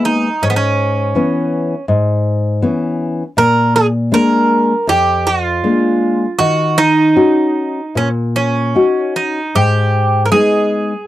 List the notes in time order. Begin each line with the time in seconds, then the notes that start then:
Already playing: G#3 A#3 B3
0.05 D#4
0.42 G#2 C#4
0.50 B3
0.56 C#4
1.15 E3 B3 C#4
1.88 G#2
2.62 E3 B3 C#4
3.37 A#2 A#4
3.76 G#4
4.12 G#3 A#3 D4 A#4
4.87 F2 G4
5.27 F4
5.64 G#3 A#3 D4
6.39 D#3 F#4
6.78 D#4
7.16 C#4 D#4 F#4
7.95 A#2 C#4
8.36 C#4
8.75 C#4 D#4 F#4
9.16 D#4
9.55 G#2 G4
10.25 A#4
10.31 G#3 B3 D#4 G#4